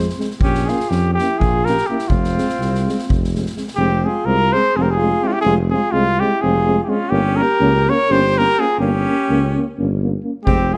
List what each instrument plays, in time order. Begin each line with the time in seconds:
Already playing: alto saxophone G#4, cornet C5
0.10 snare
0.18 euphonium G#3 C4, snare
0.31 snare
0.39 tuba A#1, alto saxophone C#4, cornet G4, kick
0.55 snare
0.66 euphonium A#3, alto saxophone F4, cornet G#4, snare
0.70 euphonium C#4
0.80 snare
0.89 tuba F2, alto saxophone C#4, cornet G4, snare
1.14 cornet G4
1.19 euphonium A#3 C#4, alto saxophone E4, snare
1.39 tuba A#1, cornet G#4, kick
1.44 alto saxophone F4
1.65 euphonium A#3 C#4, cornet A#4, snare
1.70 alto saxophone G4
1.78 snare
1.87 euphonium A#3 C#4, cornet G4
1.91 alto saxophone E4
1.99 snare
2.08 tuba F1, alto saxophone C4, cornet F4, kick
2.24 snare
2.37 euphonium G#3 C4, snare
2.49 snare
2.59 tuba C2, snare
2.75 snare
2.86 euphonium G#3 C4, snare
2.99 snare
3.09 tuba F1, kick
3.24 snare
3.33 euphonium G#3 C4, snare
3.46 snare
3.56 euphonium G#3 C4, snare
3.68 snare
3.76 tuba F1, euphonium G#3 C4, alto saxophone C4, cornet G4
4.04 euphonium G#3 C4, alto saxophone F4, cornet G#4
4.25 tuba C2, euphonium G#3 C4, alto saxophone F4, cornet A#4
4.53 euphonium G#3 C4, alto saxophone G#4, cornet C5
4.76 tuba F1, euphonium G#3 C4, alto saxophone F4, cornet G#4
4.82 alto saxophone G4, cornet A#4
4.91 cornet G#4
4.96 alto saxophone F4
5.01 euphonium G#3 C4
5.22 euphonium G#3 C4, alto saxophone E4, cornet G4
5.27 alto saxophone C#4, cornet F4
5.33 alto saxophone E4, cornet G4
5.41 tuba F1, euphonium G#3 C4, cornet G#4
5.47 alto saxophone F4
5.71 euphonium G#3 C4, alto saxophone F4, cornet G#4
5.92 tuba C2, euphonium G#3 C4, alto saxophone C4, cornet F4
6.20 euphonium G#3 C4, cornet G4
6.24 alto saxophone E4
6.41 tuba F1, euphonium G#3 C4, alto saxophone F4, cornet G#4
6.67 euphonium G#3 C4
6.83 euphonium C4, alto saxophone E4, cornet G4
6.88 euphonium G#3, alto saxophone C#4, cornet F4
7.10 tuba G1, euphonium A#3 C#4, alto saxophone C#4, cornet G4
7.36 euphonium A#3 C#4, cornet A#4
7.43 alto saxophone G4
7.60 tuba C#2, euphonium A#3 C#4
7.88 euphonium A#3 C#4, cornet C#5
7.92 alto saxophone A#4
8.09 tuba G1, euphonium A#3 C#4, alto saxophone G4, cornet C5
8.37 euphonium A#3 C#4, alto saxophone G4, cornet A#4
8.57 euphonium A#3 C#4, alto saxophone F4, cornet G#4
8.79 tuba G1, euphonium A#3 C#4, alto saxophone C#4, cornet G4
9.07 euphonium A#3 C#4
9.29 tuba C#2, euphonium A#3 C#4
9.56 euphonium A#3 C#4
9.77 tuba G1, euphonium A#3 C#4
10.03 euphonium A#3 C#4
10.23 euphonium A#3 C#4
10.44 tuba F1, euphonium G#3 C4, alto saxophone C4, cornet G4, kick
10.70 euphonium G#3 C4, alto saxophone F4, cornet G#4